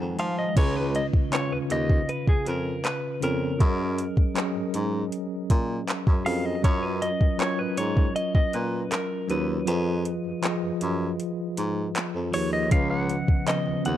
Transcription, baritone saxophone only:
0.00 F2
0.19 F3
0.57 C#2
1.14 D#2
1.52 D#2
1.71 D#2
2.27 F2
2.47 F2
3.23 F2
3.60 F#2
4.17 G#2
4.56 G#2
4.74 G#2
5.50 A#2
6.07 F#2
6.26 F2
6.64 F#2
7.21 G#2
7.59 G#2
7.78 G#2
8.35 A#2
8.54 A#2
9.30 D#2
9.67 F2
10.25 F#2
10.63 F#2
10.82 F#2
11.58 G#2
12.15 F2
12.34 D#2
12.72 C#2
13.28 D#2
13.67 D#2
13.86 D#2

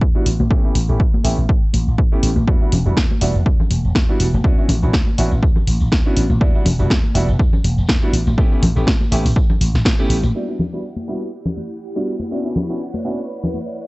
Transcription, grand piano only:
0.15 G3 B3 D4 E4 F#4
0.50 A3 B3 C#4 E4 G4
0.64 A3 B3 C#4 E4 G4
0.89 A3 B3 C#4 E4 G4
1.24 A3 B3 C#4 E4 G4
2.12 A3 B3 C#4 E4 G4
2.47 G3 B3 D4 E4 F#4
2.61 G3 B3 D4 E4 F#4
2.86 G3 B3 D4 E4 F#4
3.21 G3 B3 D4 E4 F#4
4.09 G3 B3 D4 E4 F#4
4.44 B3 C#4 D4 E4 F#4
4.58 B3 C#4 D4 E4 F#4
4.82 B3 C#4 D4 E4 F#4
5.18 B3 C#4 D4 E4 F#4
6.05 B3 C#4 D4 E4 F#4
6.40 G3 B3 D4 E4 F#4
6.54 G3 B3 D4 E4 F#4
6.79 G3 B3 D4 E4 F#4
7.14 G3 B3 D4 E4 F#4
8.02 G3 B3 D4 E4 F#4
8.37 A3 B3 C#4 E4 G4
8.51 A3 B3 C#4 E4 G4
8.76 A3 B3 C#4 E4 G4
9.11 A3 B3 C#4 E4 G4
9.99 A3 B3 C#4 E4 G4
10.35 G3 B3 D4 E4 F#4
10.48 G3 B3 D4 E4 F#4
10.73 G3 B3 D4 E4 F#4
11.08 G3 B3 D4 E4 F#4
11.96 G3 B3 D4 E4 F#4
12.31 B3 C#4 D4 E4 F#4
12.45 B3 C#4 D4 E4 F#4
12.69 B3 C#4 D4 E4 F#4
13.05 B3 C#4 D4 E4 F#4

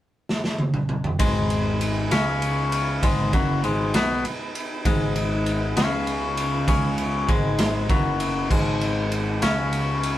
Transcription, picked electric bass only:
1.20 G#1
2.12 C#2
3.03 G#1
3.33 F#1
3.64 G#1
3.95 B1
4.26 muted picked electric bass stroke
4.85 G#1
5.77 C#2
6.68 C#2
7.28 G#1
7.89 F#1
8.51 G#1
9.43 C#2

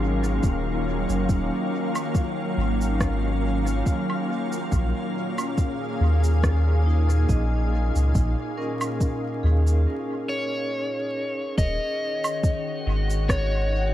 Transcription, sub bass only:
Already playing: G#1
0.44 D#1
1.09 F#1
1.29 D#1
2.57 G#1
4.72 A#1
6.01 D#2
7.29 A#1
7.96 C#2
8.15 A#1
9.44 D#2
11.58 D#1
12.87 G#1

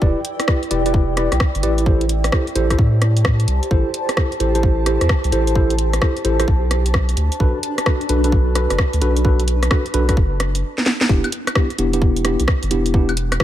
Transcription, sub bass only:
0.02 E1
0.71 E1
1.32 B1
1.55 G1
1.63 A1
2.55 A1
2.79 A2
3.48 C2
3.71 A1
4.40 A1
5.01 E2
5.24 C2
5.32 A1
6.25 A1
6.48 B1
7.17 D2
7.40 B1
8.09 B1
8.70 F#1
8.93 D2
9.02 B1
9.94 B1
10.17 F#1
11.09 E1
11.79 E1
12.40 B1
12.63 G1
12.71 E1

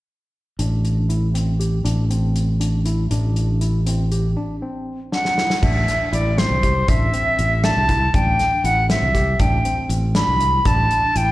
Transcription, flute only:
5.13 F#5
5.63 E5
6.13 D5
6.38 C5
6.89 E5
7.64 A5
8.08 A5
8.15 G5
8.65 F#5
8.90 E5
9.40 G5
10.16 B5
10.66 A5
11.17 G5

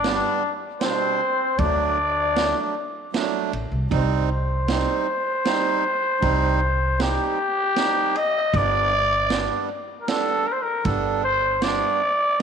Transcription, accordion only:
0.03 G3 B3 D4
0.82 B2 G3 D4
1.59 F#3 A3 D4
2.35 F#3 A3 D4
3.12 F#3 A3 D4
3.90 G3 C4 D#4
4.68 G3 C4 D#4
5.45 G3 C4 D#4
6.20 G3 C4 D#4
6.98 G3 C4 D#4
7.76 G3 C4 D#4
8.54 G3 B3 D4
9.30 G3 B3 D4
10.08 G3 B3 D4
10.84 G3 B3 D4
11.63 G3 B3 D4

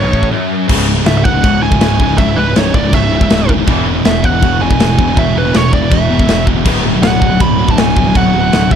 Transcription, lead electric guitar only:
Already playing: C#5
1.07 E5
1.18 E5
1.24 F#5
1.63 G#5
2.18 E5
2.37 B4
2.57 C#5
2.75 D5
2.94 E5
4.06 E5
4.25 F#5
4.62 G#5
5.19 E5
5.38 B4
5.56 C#5
5.73 D5
5.91 E5
7.03 F#5
7.41 B5
7.71 A5
7.78 G#5
8.16 F#5

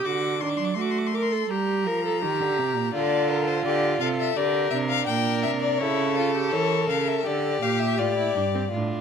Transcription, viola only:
0.05 F#4
0.42 D4
0.78 F#4
1.15 A#4
1.32 A4
1.50 G4
1.87 A#4
2.05 A4
2.23 G4
2.94 F4
4.37 G4
4.74 D4
5.81 E4
6.17 F4
6.35 G4
6.54 A#4
7.25 A4
7.62 G4
7.98 F4
8.17 E4
8.36 D4
8.55 C4
8.73 D4

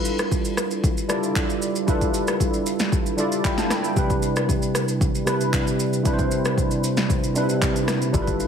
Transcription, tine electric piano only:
Already playing: G3 D4 E4 F4 A4 B4
1.08 G3 D4 E4 F4 A4 D5
1.86 G3 D4 E4 F4 A4 B4
3.17 G3 D4 E4 F4 A4 D5
3.45 E5 G5 B5
3.58 F5 A5
3.71 G5 B5
3.84 E5 G5
3.95 C3 G3 D4 D#4 B4
4.04 E4
5.25 C3 G3 D4 E4 B4
6.04 C3 G3 D4 E4 B4
6.13 C5
7.34 C3 G3 D4 D#4 B4
7.43 E4
8.12 G3 D4 E4 F4 A4 A#4
8.22 B4

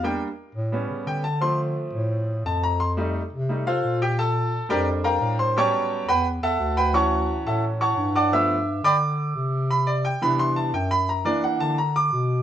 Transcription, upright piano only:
0.03 G3 A#3 D4 G5
0.72 G3 B3 C#4
1.07 G5
1.24 A5
1.41 F3 A3 C4 C6
2.46 A5
2.63 A#5
2.80 C6
2.97 G3 A3 D#4
3.49 G3 A3 D#4
3.67 F4 A4 C5 F5
4.02 G4 G5
4.19 A4 A5
4.69 G3 C4 D4 G4 A#4 D5 G5
5.04 A#4 F5 G5 A#5
5.39 C5 C6
5.57 F#3 G3 B3 C#4 C#5 G5 A5 C#6
6.09 B4 F#5 G5 B5
6.43 A4 E5 F#5 A5
6.77 B4 F#5 G5 B5
6.93 E3 F#3 C#4 C#5 F#5 A5 C#6
7.47 A4 E5 F#5 A5
7.81 C#5 F#5 A5 C#6
8.15 D5 F#5 A5 D6
8.32 F3 A3 B3 E5 E6
8.84 D5 G5 B5 D6
9.71 B5
9.87 D5
10.05 G5
10.22 E3 B3 D4 B5
10.39 C6
10.56 A5
10.74 G5
10.91 B5
11.09 A#5
11.25 E3 A#3 D4 D5
11.44 F#5
11.60 A5
11.78 A#5
11.96 D6

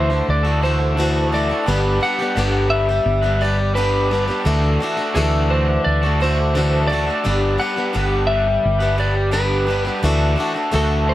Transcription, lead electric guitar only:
Already playing: C5
0.30 D5
0.63 C5
1.34 D5
2.03 F#5
2.70 E5
3.42 D5
3.75 B4
5.15 A4
5.50 C5
5.84 D5
6.22 C5
6.87 D5
7.60 F#5
8.27 E5
9.00 D5
9.33 B4
10.76 A4
11.09 C5

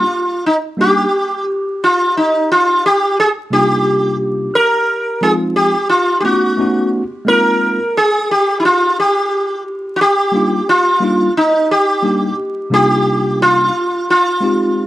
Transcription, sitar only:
Already playing: F4
0.46 D#4
0.81 G4
1.84 F4
2.17 D#4
2.52 F4
2.86 G4
3.20 G#4
3.53 G4
4.55 A#4
5.23 G#4
5.56 G4
5.90 F4
6.20 G4
6.25 F#4
7.28 A#4
7.97 G#4
8.31 G4
8.60 E4
8.65 F4
9.00 G4
9.96 F#4
10.01 G4
10.69 F4
11.37 D#4
11.71 G4
12.74 G4
13.42 F4
14.10 F4

